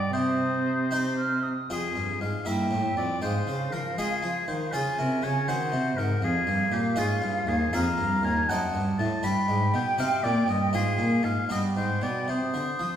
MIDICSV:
0, 0, Header, 1, 5, 480
1, 0, Start_track
1, 0, Key_signature, -4, "minor"
1, 0, Tempo, 513699
1, 126, Time_signature, 6, 3, 24, 8
1, 3004, Tempo, 501672
1, 7330, Key_signature, -3, "minor"
1, 10204, Tempo, 518135
1, 12263, End_track
2, 0, Start_track
2, 0, Title_t, "Flute"
2, 0, Program_c, 0, 73
2, 0, Note_on_c, 0, 79, 72
2, 110, Note_off_c, 0, 79, 0
2, 116, Note_on_c, 0, 87, 66
2, 789, Note_off_c, 0, 87, 0
2, 853, Note_on_c, 0, 91, 72
2, 909, Note_off_c, 0, 91, 0
2, 1100, Note_on_c, 0, 89, 66
2, 1336, Note_on_c, 0, 87, 57
2, 1350, Note_off_c, 0, 89, 0
2, 1580, Note_off_c, 0, 87, 0
2, 2303, Note_on_c, 0, 79, 54
2, 2971, Note_off_c, 0, 79, 0
2, 3018, Note_on_c, 0, 77, 52
2, 4456, Note_on_c, 0, 80, 58
2, 4470, Note_off_c, 0, 77, 0
2, 5160, Note_off_c, 0, 80, 0
2, 5166, Note_on_c, 0, 78, 55
2, 5875, Note_off_c, 0, 78, 0
2, 5882, Note_on_c, 0, 77, 63
2, 7295, Note_off_c, 0, 77, 0
2, 7327, Note_on_c, 0, 82, 73
2, 8042, Note_on_c, 0, 81, 61
2, 8056, Note_off_c, 0, 82, 0
2, 8508, Note_off_c, 0, 81, 0
2, 8767, Note_on_c, 0, 79, 67
2, 10170, Note_off_c, 0, 79, 0
2, 10200, Note_on_c, 0, 77, 56
2, 10898, Note_off_c, 0, 77, 0
2, 10910, Note_on_c, 0, 79, 52
2, 11620, Note_off_c, 0, 79, 0
2, 11641, Note_on_c, 0, 87, 53
2, 12263, Note_off_c, 0, 87, 0
2, 12263, End_track
3, 0, Start_track
3, 0, Title_t, "Oboe"
3, 0, Program_c, 1, 68
3, 0, Note_on_c, 1, 74, 80
3, 117, Note_off_c, 1, 74, 0
3, 123, Note_on_c, 1, 72, 84
3, 1318, Note_off_c, 1, 72, 0
3, 1598, Note_on_c, 1, 68, 59
3, 2035, Note_off_c, 1, 68, 0
3, 2066, Note_on_c, 1, 77, 60
3, 2303, Note_on_c, 1, 76, 63
3, 2317, Note_off_c, 1, 77, 0
3, 2768, Note_off_c, 1, 76, 0
3, 2774, Note_on_c, 1, 74, 60
3, 3003, Note_off_c, 1, 74, 0
3, 3011, Note_on_c, 1, 72, 70
3, 3489, Note_on_c, 1, 70, 60
3, 3503, Note_off_c, 1, 72, 0
3, 3728, Note_off_c, 1, 70, 0
3, 3735, Note_on_c, 1, 68, 68
3, 4203, Note_off_c, 1, 68, 0
3, 4214, Note_on_c, 1, 72, 60
3, 4447, Note_on_c, 1, 65, 70
3, 4461, Note_off_c, 1, 72, 0
3, 4691, Note_off_c, 1, 65, 0
3, 4701, Note_on_c, 1, 70, 62
3, 4940, Note_on_c, 1, 73, 67
3, 4954, Note_off_c, 1, 70, 0
3, 5175, Note_on_c, 1, 72, 76
3, 5189, Note_off_c, 1, 73, 0
3, 5641, Note_on_c, 1, 70, 71
3, 5655, Note_off_c, 1, 72, 0
3, 5887, Note_off_c, 1, 70, 0
3, 5899, Note_on_c, 1, 68, 81
3, 6368, Note_on_c, 1, 67, 70
3, 6382, Note_off_c, 1, 68, 0
3, 6604, Note_on_c, 1, 65, 76
3, 6618, Note_off_c, 1, 67, 0
3, 7091, Note_on_c, 1, 68, 76
3, 7106, Note_off_c, 1, 65, 0
3, 7337, Note_on_c, 1, 77, 88
3, 7351, Note_off_c, 1, 68, 0
3, 7809, Note_off_c, 1, 77, 0
3, 7815, Note_on_c, 1, 80, 84
3, 8053, Note_on_c, 1, 78, 84
3, 8067, Note_off_c, 1, 80, 0
3, 8386, Note_off_c, 1, 78, 0
3, 8526, Note_on_c, 1, 81, 75
3, 8759, Note_off_c, 1, 81, 0
3, 8768, Note_on_c, 1, 83, 88
3, 9236, Note_off_c, 1, 83, 0
3, 9257, Note_on_c, 1, 79, 77
3, 9485, Note_off_c, 1, 79, 0
3, 9491, Note_on_c, 1, 77, 74
3, 9722, Note_on_c, 1, 74, 68
3, 9736, Note_off_c, 1, 77, 0
3, 9960, Note_off_c, 1, 74, 0
3, 9965, Note_on_c, 1, 75, 68
3, 10202, Note_off_c, 1, 75, 0
3, 10208, Note_on_c, 1, 68, 75
3, 10671, Note_on_c, 1, 77, 73
3, 10685, Note_off_c, 1, 68, 0
3, 10912, Note_off_c, 1, 77, 0
3, 10921, Note_on_c, 1, 75, 69
3, 11027, Note_off_c, 1, 75, 0
3, 11157, Note_on_c, 1, 72, 60
3, 11396, Note_on_c, 1, 74, 62
3, 11410, Note_off_c, 1, 72, 0
3, 11646, Note_on_c, 1, 72, 68
3, 11660, Note_off_c, 1, 74, 0
3, 12263, Note_off_c, 1, 72, 0
3, 12263, End_track
4, 0, Start_track
4, 0, Title_t, "Harpsichord"
4, 0, Program_c, 2, 6
4, 125, Note_on_c, 2, 48, 53
4, 849, Note_on_c, 2, 60, 38
4, 855, Note_on_c, 2, 63, 39
4, 860, Note_on_c, 2, 67, 44
4, 1357, Note_off_c, 2, 48, 0
4, 1376, Note_off_c, 2, 60, 0
4, 1379, Note_off_c, 2, 63, 0
4, 1383, Note_off_c, 2, 67, 0
4, 1590, Note_on_c, 2, 41, 38
4, 1591, Note_on_c, 2, 65, 31
4, 1593, Note_on_c, 2, 60, 29
4, 1600, Note_on_c, 2, 68, 32
4, 1802, Note_off_c, 2, 41, 0
4, 1803, Note_off_c, 2, 60, 0
4, 1829, Note_on_c, 2, 43, 39
4, 2041, Note_off_c, 2, 43, 0
4, 2068, Note_on_c, 2, 44, 34
4, 2263, Note_off_c, 2, 65, 0
4, 2267, Note_off_c, 2, 68, 0
4, 2278, Note_off_c, 2, 44, 0
4, 2291, Note_on_c, 2, 43, 36
4, 2296, Note_on_c, 2, 64, 31
4, 2299, Note_on_c, 2, 58, 29
4, 2303, Note_on_c, 2, 70, 29
4, 2505, Note_off_c, 2, 43, 0
4, 2510, Note_off_c, 2, 58, 0
4, 2531, Note_on_c, 2, 45, 38
4, 2744, Note_off_c, 2, 45, 0
4, 2777, Note_on_c, 2, 41, 40
4, 2967, Note_off_c, 2, 64, 0
4, 2971, Note_off_c, 2, 70, 0
4, 2986, Note_off_c, 2, 41, 0
4, 3006, Note_on_c, 2, 56, 43
4, 3012, Note_on_c, 2, 44, 40
4, 3227, Note_off_c, 2, 44, 0
4, 3241, Note_off_c, 2, 56, 0
4, 3250, Note_on_c, 2, 49, 39
4, 3465, Note_off_c, 2, 49, 0
4, 3493, Note_on_c, 2, 53, 39
4, 3706, Note_off_c, 2, 53, 0
4, 3739, Note_on_c, 2, 56, 38
4, 3740, Note_on_c, 2, 60, 32
4, 3742, Note_on_c, 2, 68, 36
4, 3743, Note_on_c, 2, 65, 33
4, 3950, Note_off_c, 2, 56, 0
4, 3972, Note_on_c, 2, 53, 43
4, 4082, Note_off_c, 2, 60, 0
4, 4187, Note_off_c, 2, 53, 0
4, 4215, Note_on_c, 2, 51, 43
4, 4257, Note_off_c, 2, 68, 0
4, 4258, Note_off_c, 2, 65, 0
4, 4429, Note_off_c, 2, 51, 0
4, 4450, Note_on_c, 2, 49, 41
4, 4453, Note_on_c, 2, 61, 33
4, 4460, Note_on_c, 2, 65, 34
4, 4464, Note_on_c, 2, 68, 36
4, 4668, Note_off_c, 2, 49, 0
4, 4698, Note_on_c, 2, 48, 44
4, 4913, Note_off_c, 2, 48, 0
4, 4925, Note_on_c, 2, 49, 44
4, 5137, Note_off_c, 2, 61, 0
4, 5140, Note_off_c, 2, 65, 0
4, 5142, Note_off_c, 2, 68, 0
4, 5145, Note_off_c, 2, 49, 0
4, 5173, Note_on_c, 2, 51, 43
4, 5177, Note_on_c, 2, 60, 34
4, 5182, Note_on_c, 2, 66, 32
4, 5389, Note_off_c, 2, 51, 0
4, 5402, Note_on_c, 2, 48, 46
4, 5623, Note_off_c, 2, 48, 0
4, 5653, Note_on_c, 2, 44, 49
4, 5857, Note_off_c, 2, 60, 0
4, 5859, Note_off_c, 2, 66, 0
4, 5869, Note_off_c, 2, 44, 0
4, 5883, Note_on_c, 2, 41, 47
4, 6103, Note_off_c, 2, 41, 0
4, 6121, Note_on_c, 2, 43, 48
4, 6341, Note_off_c, 2, 43, 0
4, 6355, Note_on_c, 2, 46, 46
4, 6578, Note_off_c, 2, 46, 0
4, 6586, Note_on_c, 2, 44, 46
4, 6586, Note_on_c, 2, 61, 40
4, 6590, Note_on_c, 2, 65, 39
4, 6596, Note_on_c, 2, 68, 44
4, 6813, Note_off_c, 2, 44, 0
4, 6836, Note_on_c, 2, 43, 49
4, 7058, Note_off_c, 2, 43, 0
4, 7077, Note_on_c, 2, 39, 51
4, 7113, Note_off_c, 2, 61, 0
4, 7116, Note_off_c, 2, 65, 0
4, 7119, Note_off_c, 2, 68, 0
4, 7299, Note_off_c, 2, 39, 0
4, 7325, Note_on_c, 2, 65, 40
4, 7327, Note_on_c, 2, 41, 51
4, 7328, Note_on_c, 2, 60, 38
4, 7337, Note_on_c, 2, 68, 42
4, 7545, Note_off_c, 2, 41, 0
4, 7545, Note_off_c, 2, 60, 0
4, 7563, Note_on_c, 2, 43, 50
4, 7782, Note_off_c, 2, 43, 0
4, 7806, Note_on_c, 2, 39, 49
4, 8007, Note_off_c, 2, 65, 0
4, 8014, Note_off_c, 2, 68, 0
4, 8022, Note_off_c, 2, 39, 0
4, 8055, Note_on_c, 2, 60, 38
4, 8056, Note_on_c, 2, 42, 45
4, 8064, Note_on_c, 2, 63, 37
4, 8067, Note_on_c, 2, 69, 38
4, 8265, Note_off_c, 2, 60, 0
4, 8266, Note_off_c, 2, 42, 0
4, 8289, Note_on_c, 2, 43, 51
4, 8501, Note_off_c, 2, 43, 0
4, 8534, Note_on_c, 2, 45, 53
4, 8732, Note_off_c, 2, 63, 0
4, 8733, Note_off_c, 2, 69, 0
4, 8745, Note_off_c, 2, 45, 0
4, 8757, Note_on_c, 2, 62, 42
4, 8764, Note_on_c, 2, 67, 42
4, 8765, Note_on_c, 2, 43, 48
4, 8976, Note_off_c, 2, 62, 0
4, 8980, Note_off_c, 2, 43, 0
4, 9001, Note_on_c, 2, 44, 47
4, 9218, Note_off_c, 2, 44, 0
4, 9246, Note_on_c, 2, 47, 47
4, 9445, Note_off_c, 2, 67, 0
4, 9460, Note_off_c, 2, 47, 0
4, 9479, Note_on_c, 2, 60, 35
4, 9482, Note_on_c, 2, 48, 45
4, 9484, Note_on_c, 2, 63, 36
4, 9491, Note_on_c, 2, 67, 37
4, 9699, Note_off_c, 2, 48, 0
4, 9727, Note_on_c, 2, 46, 47
4, 9942, Note_off_c, 2, 46, 0
4, 9957, Note_on_c, 2, 43, 51
4, 10166, Note_off_c, 2, 60, 0
4, 10169, Note_off_c, 2, 63, 0
4, 10172, Note_off_c, 2, 67, 0
4, 10178, Note_off_c, 2, 43, 0
4, 10195, Note_on_c, 2, 44, 48
4, 10195, Note_on_c, 2, 60, 35
4, 10203, Note_on_c, 2, 65, 37
4, 10412, Note_off_c, 2, 44, 0
4, 10428, Note_on_c, 2, 46, 48
4, 10646, Note_off_c, 2, 46, 0
4, 10660, Note_on_c, 2, 44, 42
4, 10872, Note_off_c, 2, 60, 0
4, 10876, Note_off_c, 2, 65, 0
4, 10881, Note_off_c, 2, 44, 0
4, 10900, Note_on_c, 2, 43, 42
4, 10904, Note_on_c, 2, 59, 33
4, 10908, Note_on_c, 2, 62, 33
4, 10917, Note_on_c, 2, 67, 31
4, 11122, Note_off_c, 2, 43, 0
4, 11155, Note_on_c, 2, 44, 39
4, 11371, Note_off_c, 2, 44, 0
4, 11385, Note_on_c, 2, 47, 41
4, 11595, Note_off_c, 2, 59, 0
4, 11596, Note_off_c, 2, 62, 0
4, 11601, Note_off_c, 2, 67, 0
4, 11608, Note_off_c, 2, 47, 0
4, 11630, Note_on_c, 2, 48, 39
4, 11853, Note_off_c, 2, 48, 0
4, 11870, Note_on_c, 2, 50, 37
4, 12094, Note_off_c, 2, 50, 0
4, 12106, Note_on_c, 2, 53, 38
4, 12263, Note_off_c, 2, 53, 0
4, 12263, End_track
5, 0, Start_track
5, 0, Title_t, "Cello"
5, 0, Program_c, 3, 42
5, 0, Note_on_c, 3, 43, 67
5, 114, Note_off_c, 3, 43, 0
5, 119, Note_on_c, 3, 48, 66
5, 1366, Note_off_c, 3, 48, 0
5, 1585, Note_on_c, 3, 41, 48
5, 1825, Note_on_c, 3, 43, 47
5, 1839, Note_off_c, 3, 41, 0
5, 2056, Note_off_c, 3, 43, 0
5, 2061, Note_on_c, 3, 44, 43
5, 2136, Note_off_c, 3, 44, 0
5, 2292, Note_on_c, 3, 43, 45
5, 2522, Note_off_c, 3, 43, 0
5, 2528, Note_on_c, 3, 45, 47
5, 2761, Note_off_c, 3, 45, 0
5, 2767, Note_on_c, 3, 41, 51
5, 3000, Note_off_c, 3, 41, 0
5, 3005, Note_on_c, 3, 44, 52
5, 3243, Note_off_c, 3, 44, 0
5, 3257, Note_on_c, 3, 49, 45
5, 3493, Note_on_c, 3, 53, 49
5, 3507, Note_off_c, 3, 49, 0
5, 3722, Note_off_c, 3, 53, 0
5, 3727, Note_on_c, 3, 56, 48
5, 3804, Note_off_c, 3, 56, 0
5, 3969, Note_on_c, 3, 53, 50
5, 4046, Note_off_c, 3, 53, 0
5, 4214, Note_on_c, 3, 51, 52
5, 4448, Note_off_c, 3, 51, 0
5, 4460, Note_on_c, 3, 49, 55
5, 4537, Note_off_c, 3, 49, 0
5, 4697, Note_on_c, 3, 48, 57
5, 4931, Note_off_c, 3, 48, 0
5, 4939, Note_on_c, 3, 49, 49
5, 5168, Note_on_c, 3, 51, 53
5, 5182, Note_off_c, 3, 49, 0
5, 5405, Note_on_c, 3, 48, 52
5, 5420, Note_off_c, 3, 51, 0
5, 5643, Note_off_c, 3, 48, 0
5, 5649, Note_on_c, 3, 44, 58
5, 5883, Note_off_c, 3, 44, 0
5, 5889, Note_on_c, 3, 41, 62
5, 6115, Note_off_c, 3, 41, 0
5, 6121, Note_on_c, 3, 43, 58
5, 6352, Note_off_c, 3, 43, 0
5, 6357, Note_on_c, 3, 46, 57
5, 6604, Note_on_c, 3, 44, 57
5, 6619, Note_off_c, 3, 46, 0
5, 6839, Note_off_c, 3, 44, 0
5, 6844, Note_on_c, 3, 43, 57
5, 7075, Note_off_c, 3, 43, 0
5, 7081, Note_on_c, 3, 39, 64
5, 7315, Note_off_c, 3, 39, 0
5, 7320, Note_on_c, 3, 41, 63
5, 7561, Note_off_c, 3, 41, 0
5, 7572, Note_on_c, 3, 43, 63
5, 7803, Note_off_c, 3, 43, 0
5, 7809, Note_on_c, 3, 39, 61
5, 8043, Note_off_c, 3, 39, 0
5, 8052, Note_on_c, 3, 42, 57
5, 8128, Note_off_c, 3, 42, 0
5, 8290, Note_on_c, 3, 43, 62
5, 8520, Note_off_c, 3, 43, 0
5, 8528, Note_on_c, 3, 45, 61
5, 8605, Note_off_c, 3, 45, 0
5, 8766, Note_on_c, 3, 43, 62
5, 8842, Note_off_c, 3, 43, 0
5, 9003, Note_on_c, 3, 44, 59
5, 9238, Note_off_c, 3, 44, 0
5, 9248, Note_on_c, 3, 47, 53
5, 9325, Note_off_c, 3, 47, 0
5, 9476, Note_on_c, 3, 48, 57
5, 9553, Note_off_c, 3, 48, 0
5, 9723, Note_on_c, 3, 46, 60
5, 9959, Note_off_c, 3, 46, 0
5, 9964, Note_on_c, 3, 43, 59
5, 10203, Note_on_c, 3, 44, 54
5, 10217, Note_off_c, 3, 43, 0
5, 10435, Note_off_c, 3, 44, 0
5, 10441, Note_on_c, 3, 46, 56
5, 10667, Note_off_c, 3, 46, 0
5, 10673, Note_on_c, 3, 44, 47
5, 10747, Note_off_c, 3, 44, 0
5, 10913, Note_on_c, 3, 43, 50
5, 11148, Note_off_c, 3, 43, 0
5, 11153, Note_on_c, 3, 44, 49
5, 11392, Note_on_c, 3, 47, 47
5, 11405, Note_off_c, 3, 44, 0
5, 11632, Note_on_c, 3, 48, 47
5, 11645, Note_off_c, 3, 47, 0
5, 11869, Note_off_c, 3, 48, 0
5, 11875, Note_on_c, 3, 50, 48
5, 11949, Note_off_c, 3, 50, 0
5, 12122, Note_on_c, 3, 53, 45
5, 12196, Note_off_c, 3, 53, 0
5, 12263, End_track
0, 0, End_of_file